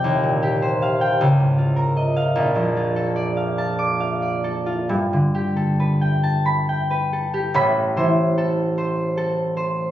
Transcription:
Already playing: G4 G5
0.04 D#2
0.23 A#2
0.42 G4
0.62 C5
0.82 F5
1.01 G5
1.21 C#2
1.40 G#2
1.58 F4
1.76 A#4
1.97 D#5
2.16 F5
2.36 A#1
2.55 F2
2.76 F4
2.96 A4
3.16 D5
3.37 F5
3.58 A5
3.79 D6
4.00 F5
4.22 D5
4.44 A4
4.66 F4
4.89 G2
5.13 D3
5.35 G4
5.56 A4
5.80 B4
6.01 G5
6.23 A5
6.46 B5
6.69 G5
6.91 B4
7.13 A4
7.34 G4
7.54 A1 A2 B5
7.97 E3 C5
8.38 A4
8.78 C5
9.17 A4
9.57 C5

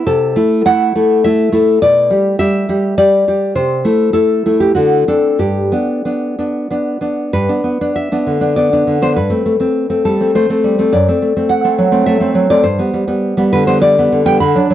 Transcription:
0.06 C3 A4
0.36 A3 E4
0.65 A3 E4 F#5
0.95 A3 E4
1.24 A3 E4 E5
1.52 A3 E4
1.82 B2 D5
2.10 G3 G4
2.39 G3 G4 E5
2.69 G3 G4
2.98 G3 G4 D5
3.28 G3 G4
3.55 C3 C5
3.85 A3 E4
4.13 A3 E4 A4
4.46 A3 E4
4.60 G4
4.75 D3 F#4
5.08 C4 D4 A4
5.39 G2 G4
5.72 B3 D4
6.05 B3 D4
6.39 B3 D4
6.71 B3 D4
7.01 B3 D4
7.33 G2 B4
7.49 B3 D4
7.64 B3
7.81 B3 D4
7.96 E5
8.12 B3 D4
8.27 D3
8.41 B3 D4
8.56 B3 D5
8.73 B3 D4
8.87 D3
9.02 B3 D4 C5
9.16 G2 B4
9.30 A3 C4
9.46 A3
9.60 A3 C4
9.90 A3 C4
10.05 G3 A4
10.20 A3 C4
10.35 A3 C5
10.50 A3 C4
10.64 G3
10.79 A3 C4
10.93 F#2 D5
11.08 A3 C4
11.22 A3
11.37 A3 C4
11.49 F#5
11.64 A3 C4
11.78 F#3
11.92 A3 C4
12.06 A3 E5
12.20 A3 C4
12.35 F#3
12.50 A3 C4 D5
12.64 G2 C5
12.79 G3 B3
12.94 G3
13.08 G3 B3
13.37 G3 B3
13.53 D3 B4
13.67 G3 B3 C5
13.81 G3 D5
13.99 G3 B3
14.12 D3
14.26 G3 B3 G5
14.40 D3 B5
14.55 F#3 D4
14.70 F#3

